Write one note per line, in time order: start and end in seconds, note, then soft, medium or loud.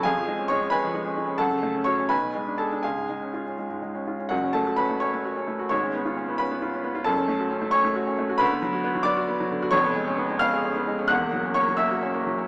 0.03 1.35 F2 medium
0.03 0.46 G#4 medium
0.03 0.46 F5 medium
0.03 0.48 G#5 medium
0.17 0.34 F3 medium
0.28 0.45 G#3 medium
0.39 0.56 C#4 medium
0.48 0.67 G#3 medium
0.48 0.70 C#5 medium
0.48 0.71 C#6 loud
0.61 0.78 C#4 medium
0.70 0.89 G#3 medium
0.70 1.35 B4 medium
0.70 1.35 G#5 medium
0.70 1.38 B5 medium
0.84 1.01 F3 medium
0.94 1.12 G#3 medium
1.05 1.23 C#4 medium
1.16 1.34 G#3 medium
1.27 1.39 C#4 medium
1.38 2.08 F#2 medium
1.38 1.82 A4 medium
1.38 1.83 F#5 medium
1.38 1.85 A5 medium
1.51 1.70 C#3 soft
1.63 1.81 A3 medium
1.75 1.93 C#4 medium
1.84 2.05 F#4 medium
1.84 2.08 C#5 medium
1.84 2.09 C#6 medium
1.99 2.10 C#4 medium
2.09 2.82 B1 medium
2.09 2.55 B4 medium
2.09 2.55 G#5 medium
2.09 2.58 B5 medium
2.23 2.42 B2 soft
2.35 2.54 G#3 soft
2.47 2.66 D4 soft
2.58 2.79 G#4 soft
2.58 2.82 A4 medium
2.58 2.83 A5 medium
2.72 2.84 D4 medium
2.83 4.29 C#2 medium
2.83 3.54 G#4 soft
2.83 3.54 F5 medium
2.83 3.58 G#5 medium
2.97 3.16 G#2 soft
3.09 3.29 G#3 soft
3.23 3.42 C#4 soft
3.34 3.53 F4 medium
3.46 3.66 C#4 soft
3.59 3.78 G#3 soft
3.70 3.90 G#2 soft
3.82 4.02 G#3 soft
3.95 4.15 C#4 soft
4.07 4.27 F4 soft
4.19 4.32 C#4 soft
4.29 5.67 F#1 medium
4.29 5.68 F#2 medium
4.29 4.53 F#4 medium
4.29 4.54 F#5 medium
4.43 4.63 C#4 medium
4.53 4.74 A3 medium
4.53 4.77 A4 medium
4.53 4.78 A5 medium
4.66 4.86 F#4 medium
4.76 4.98 C#4 medium
4.76 5.00 B4 medium
4.76 5.01 B5 medium
4.90 5.09 A3 medium
5.00 5.21 C#4 medium
5.00 5.67 C#5 medium
5.00 5.68 C#6 medium
5.14 5.33 A3 medium
5.25 5.44 F#4 medium
5.37 5.56 C#4 medium
5.48 5.67 A3 medium
5.59 5.71 F#4 medium
5.69 7.02 G#1 medium
5.69 7.03 G#2 medium
5.69 6.36 C#5 medium
5.69 6.39 C#6 medium
5.83 6.02 C#4 medium
5.95 6.13 B3 medium
6.05 6.24 F4 medium
6.17 6.36 C#4 medium
6.29 6.47 B3 medium
6.38 6.58 C#4 medium
6.38 7.03 B4 medium
6.38 7.06 B5 medium
6.51 6.69 B3 medium
6.62 6.80 F4 medium
6.74 6.92 C#4 medium
6.84 7.02 B3 medium
6.95 7.07 F4 medium
7.04 8.36 F#1 medium
7.04 8.37 F#2 medium
7.04 7.69 A4 medium
7.04 7.73 A5 loud
7.18 7.36 C#4 medium
7.28 7.47 A3 medium
7.39 7.58 F#4 medium
7.51 7.69 C#4 medium
7.62 7.80 A3 medium
7.71 7.92 C#4 medium
7.71 8.36 C#5 medium
7.71 8.40 C#6 loud
7.85 8.03 A3 medium
7.96 8.14 F#4 medium
8.07 8.25 C#4 medium
8.19 8.37 A3 medium
8.29 8.41 F#4 medium
8.38 9.69 D2 medium
8.38 9.02 B4 medium
8.38 9.06 B5 loud
8.51 8.70 B3 medium
8.62 8.80 F#3 medium
8.73 8.91 F#4 medium
8.84 9.02 B3 medium
8.95 9.13 F#3 medium
9.03 9.24 B3 medium
9.03 9.69 D5 medium
9.03 9.72 D6 loud
9.17 9.35 F#4 medium
9.28 9.47 B3 medium
9.40 9.58 F#3 medium
9.51 9.69 D3 medium
9.62 9.74 F#4 medium
9.71 11.05 F1 medium
9.71 11.06 F2 medium
9.71 10.36 C#5 medium
9.71 10.40 C#6 loud
9.84 10.02 B3 medium
9.95 10.13 G#3 medium
10.08 10.26 C#4 medium
10.18 10.37 B3 medium
10.29 10.48 G#3 medium
10.39 10.60 B3 medium
10.39 11.06 F5 medium
10.39 11.09 F6 loud
10.53 10.71 G#4 medium
10.65 10.83 C#4 medium
10.76 10.94 B3 medium
10.87 11.06 G#3 medium
10.99 11.10 C#4 medium
11.08 12.45 E1 medium
11.08 12.45 E2 medium
11.08 11.53 F#5 medium
11.08 11.56 F#6 loud
11.21 11.40 A#3 medium
11.33 11.52 F#3 medium
11.45 11.64 C#4 medium
11.54 11.75 A#3 medium
11.54 11.78 C#5 medium
11.54 11.79 C#6 loud
11.68 11.87 F#3 medium
11.77 11.98 A#3 medium
11.77 12.00 E5 medium
11.77 12.02 E6 loud
11.91 12.10 F#4 medium
12.03 12.21 C#4 medium
12.14 12.33 A#3 medium
12.26 12.45 F#3 medium
12.38 12.47 C#4 medium